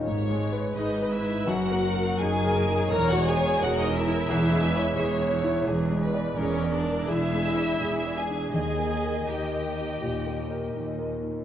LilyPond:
<<
  \new Staff \with { instrumentName = "Violin section" } { \time 4/4 \key gis \minor \tempo 4 = 84 r4 dis''8 e''8 fis''4 gis''4 | ais''16 fis''16 gis''8 fis''16 dis''16 e''2~ e''8 | r4 cis''8 d''8 e''4. gis''8 | gis''4 g''2 r4 | }
  \new Staff \with { instrumentName = "Violin section" } { \time 4/4 \key gis \minor cis''4 b'4 ais'4 gis'8 ais'8 | cis''4 ais'4 gis'8 b'8 cis''4 | gis'8 b'8 ais'4 gis'4 gis'4 | dis''2.~ dis''8 r8 | }
  \new Staff \with { instrumentName = "Viola section" } { \time 4/4 \key gis \minor r4 dis'8 e'8 fis'4 gis'4 | ais'16 fis'16 gis'8 fis'16 dis'16 e'2~ e'8 | r4 cis'8 d'8 e'4. gis'8 | gis'4 g'2 r4 | }
  \new Staff \with { instrumentName = "Grand piano" } { \time 4/4 \key gis \minor \tuplet 3/2 { gis,8 gis8 b'8 gis'8 b'8 dis'8 fis,8 ais8 ais'8 dis'8 ais'8 dis'8 } | \tuplet 3/2 { e,8 gis8 cis''8 gis'8 cis''8 e'8 e,8 gis8 cis''8 gis'8 cis''8 e'8 } | \tuplet 3/2 { e,8 gis8 d''8 gis'8 d''8 d'8 e8 gis8 d''8 gis'8 d''8 d'8 } | \tuplet 3/2 { dis,8 ais8 ais'8 dis'8 ais'8 dis'8 ais,8 ais8 ais'8 dis'8 ais'8 dis'8 } | }
  \new Staff \with { instrumentName = "Cello section" } { \clef bass \time 4/4 \key gis \minor gis,4 gis,4 fis,4 fis,4 | e,4 e,4 e,4 e,4 | e,4 e,4 e,4 e,4 | dis,4 dis,4 dis,4 dis,4 | }
  \new Staff \with { instrumentName = "Double bass section" } { \clef bass \time 4/4 \key gis \minor gis,,4 gis,,4 fis,,4 fis,,4 | e,,4 e,,4 e,,4 e,,4 | e,,4 e,,4 e,,4 e,,4 | dis,4 dis,4 dis,4 dis,4 | }
>>